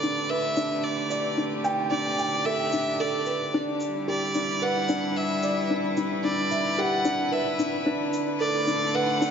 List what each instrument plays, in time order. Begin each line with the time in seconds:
Already playing: analog synth bass E1, string quartet D3 A3 E4 G4 B4, felt piano D4 A4, violin D5
0.03 felt piano D4, shaker
0.30 felt piano B4, violin E5
0.57 felt piano D4, shaker
0.84 violin D5
1.10 felt piano D5, shaker
1.37 felt piano D4
1.64 felt piano G5, shaker
1.91 felt piano D4, violin D5
2.18 felt piano G5, shaker
2.46 felt piano A4, violin E5
2.73 felt piano D4, shaker
3.00 felt piano A4, violin D5
3.26 felt piano B4, shaker
3.54 analog synth bass E1, felt piano D4
3.81 string quartet G3, shaker
3.90 string quartet E4
4.08 felt piano G4, violin D5
4.32 felt piano D4, string quartet B4, shaker
4.62 felt piano B4, violin F#5
4.89 felt piano D4, shaker
5.17 violin E5
5.43 felt piano D5, shaker
5.70 felt piano D4
5.97 felt piano D4, shaker
6.24 felt piano D4, violin D5
6.51 felt piano E5, shaker
6.78 felt piano G4, violin F#5
7.05 felt piano D4, shaker
7.32 felt piano B4, violin E5
7.59 felt piano D4, shaker
7.86 string quartet D3, felt piano D4
8.14 shaker
8.40 string quartet A3, felt piano A4, violin D5
8.67 felt piano D4, shaker
8.95 felt piano B4, violin F#5
9.14 string quartet G4
9.21 felt piano D4, shaker